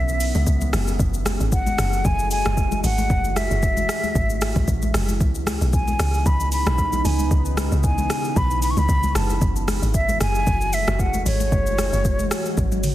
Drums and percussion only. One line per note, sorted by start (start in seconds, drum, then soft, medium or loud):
0.09 shaker medium
0.20 open hi-hat medium
0.20 shaker loud
0.35 high conga medium
0.35 shaker medium
0.47 kick loud
0.47 shaker medium
0.61 high conga medium
0.61 shaker medium
0.73 cross-stick loud
0.73 open hi-hat medium
0.73 high conga medium
0.73 low conga medium
0.73 shaker loud
0.88 high conga medium
0.88 shaker medium
1.00 kick loud
1.00 low conga medium
1.00 shaker medium
1.14 shaker medium
1.25 cross-stick medium
1.25 open hi-hat medium
1.25 high conga medium
1.25 shaker medium
1.40 shaker medium
1.52 kick loud
1.52 shaker medium
1.67 high conga medium
1.67 shaker medium
1.78 cross-stick medium
1.78 open hi-hat medium
1.78 shaker medium
1.93 shaker soft
2.05 kick loud
2.05 low conga medium
2.05 shaker medium
2.19 shaker medium
2.31 open hi-hat medium
2.31 shaker loud
2.45 cross-stick loud
2.45 high conga medium
2.45 shaker medium
2.57 kick loud
2.57 shaker medium
2.72 high conga medium
2.72 shaker medium
2.84 open hi-hat medium
2.84 high conga medium
2.84 low conga medium
2.84 shaker loud
2.98 high conga medium
2.98 shaker medium
3.10 kick loud
3.10 low conga medium
3.10 shaker medium
3.24 shaker medium
3.36 cross-stick medium
3.36 open hi-hat medium
3.36 high conga medium
3.36 shaker medium
3.51 shaker medium
3.63 kick loud
3.63 shaker medium
3.77 high conga medium
3.77 shaker medium
3.89 cross-stick medium
3.89 open hi-hat medium
3.89 shaker medium
4.03 high conga medium
4.03 shaker soft
4.15 kick loud
4.15 low conga medium
4.15 shaker medium
4.30 shaker medium
4.41 cross-stick loud
4.41 open hi-hat medium
4.41 shaker medium
4.56 kick loud
4.56 high conga medium
4.56 shaker medium
4.68 kick loud
4.68 shaker medium
4.82 high conga medium
4.82 shaker medium
4.94 cross-stick loud
4.94 open hi-hat medium
4.94 high conga medium
4.94 low conga medium
4.94 shaker loud
5.09 high conga medium
5.09 shaker medium
5.21 kick loud
5.21 low conga medium
5.21 shaker medium
5.35 shaker medium
5.47 cross-stick medium
5.47 open hi-hat medium
5.47 high conga medium
5.47 shaker medium
5.61 shaker medium
5.73 kick loud
5.73 shaker medium
5.88 high conga medium
5.88 shaker medium
5.99 cross-stick medium
5.99 open hi-hat medium
5.99 shaker loud
6.14 shaker soft
6.26 kick loud
6.26 low conga medium
6.26 shaker medium
6.40 shaker medium
6.52 open hi-hat medium
6.52 shaker loud
6.66 cross-stick loud
6.66 high conga medium
6.66 shaker medium
6.78 kick loud
6.78 shaker medium
6.93 high conga medium
6.93 shaker medium
7.05 open hi-hat medium
7.05 high conga medium
7.05 low conga medium
7.05 shaker loud
7.19 high conga medium
7.19 shaker medium
7.31 kick loud
7.31 low conga medium
7.31 shaker medium
7.45 shaker medium
7.57 cross-stick medium
7.57 open hi-hat medium
7.57 high conga medium
7.57 shaker medium
7.72 shaker medium
7.84 kick loud
7.84 shaker medium
7.98 high conga medium
7.98 shaker medium
8.10 cross-stick medium
8.10 open hi-hat medium
8.10 shaker loud
8.24 shaker soft
8.36 kick loud
8.36 low conga medium
8.36 shaker medium
8.51 shaker medium
8.62 open hi-hat medium
8.62 shaker loud
8.77 high conga medium
8.77 shaker medium
8.89 kick loud
8.89 shaker medium
9.03 high conga medium
9.03 shaker medium
9.15 cross-stick loud
9.15 open hi-hat medium
9.15 high conga medium
9.15 low conga medium
9.15 shaker loud
9.30 high conga medium
9.30 shaker medium
9.42 kick loud
9.42 low conga medium
9.42 shaker medium
9.56 shaker medium
9.68 cross-stick medium
9.68 open hi-hat medium
9.68 high conga medium
9.68 shaker medium
9.82 shaker medium
9.94 kick loud
9.94 shaker medium
10.09 high conga medium
10.09 shaker medium
10.21 cross-stick medium
10.21 open hi-hat medium
10.21 shaker medium
10.35 shaker soft
10.47 kick loud
10.47 low conga medium
10.47 shaker medium
10.61 shaker medium
10.73 open hi-hat medium
10.73 shaker medium
10.87 cross-stick loud
10.87 high conga medium
10.87 shaker medium
10.99 kick loud
10.99 shaker medium
11.14 high conga medium
11.14 shaker medium
11.26 open hi-hat medium
11.26 high conga medium
11.26 low conga medium
11.26 shaker loud
11.40 high conga medium
11.40 shaker medium
11.52 kick loud
11.52 low conga medium
11.52 shaker medium
11.66 shaker medium
11.78 cross-stick medium
11.78 open hi-hat medium
11.78 high conga medium
11.78 shaker medium
11.93 shaker medium
12.05 kick loud
12.05 shaker medium
12.19 high conga medium
12.19 shaker medium
12.31 cross-stick loud
12.31 open hi-hat medium
12.31 shaker loud
12.46 shaker medium
12.57 kick loud
12.57 high tom medium
12.57 low conga medium
12.57 shaker medium
12.72 high tom medium
12.72 shaker medium
12.83 open hi-hat medium
12.83 mid tom medium
12.83 shaker loud